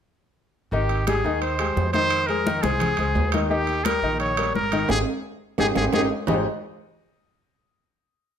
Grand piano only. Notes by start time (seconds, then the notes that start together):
0.72 D#3 D#4 D#5
1.07 G3 G4 G#4
1.24 D#3 D#4 D#5
1.59 G#3 G4 G#4
1.94 D#3 D#4 D#5
2.29 G#3 G#4 C5
2.47 D#3 D#4 D#5
2.64 G#3 G#4 C5
2.99 G#3 G#4 C5
3.33 D#3 D#4 D#5
3.50 D#3 D#4 D#5
3.86 G3 G4 A#4
4.03 D#3 D#4 D#5
4.38 G3 G4 A#4
4.72 D#3 D#4 D#5
4.89 D#4 G4 G#4
5.59 D#4 G4 G#4
5.77 D#4 G4 G#4
5.94 D#4 G4 G#4
6.28 G#3 D#4 G4 G#4 C5 D#5